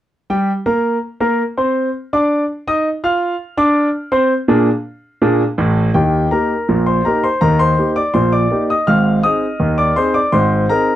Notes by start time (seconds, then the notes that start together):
0.30 G3 G4 G5
0.66 A#3 A#4 A#5
1.20 A#3 A#4 A#5
1.57 C4 C5 C6
2.13 D4 D5 D6
2.67 D#4 D#5 D#6
3.04 F4 F5 F6
3.57 D4 D5 D6
4.12 C4 C5 C6
4.48 A#2 A#3 D4 G#4
5.22 A#2 A#3 D4 G#4
5.58 A1 A2
5.94 D#2 D#3 G4 G5
6.31 A#3 D#4 G4 A#4 A#5
6.69 A#1 A#2
6.86 C5 C6
7.05 A#3 D#4 G4 A#4 A#5
7.24 C5 C6
7.41 D#2 D#3 A#4 A#5
7.59 C5 C6
7.79 A#3 D#4 G4
7.96 D5 D6
8.14 A#1 A#2 C5 C6
8.32 D5 D6
8.51 A#3 D#4 G4
8.70 D#5 D#6
8.87 G#1 G#2 F5 F6
9.23 C4 D#4 G#4 D#5 D#6
9.60 D#2 D#3
9.78 D5 D6
9.96 C4 D#4 G#4 C5 C6
10.14 D5 D6
10.32 G#1 G#2 C5 C6
10.69 C4 D#4 G#4 A#4 A#5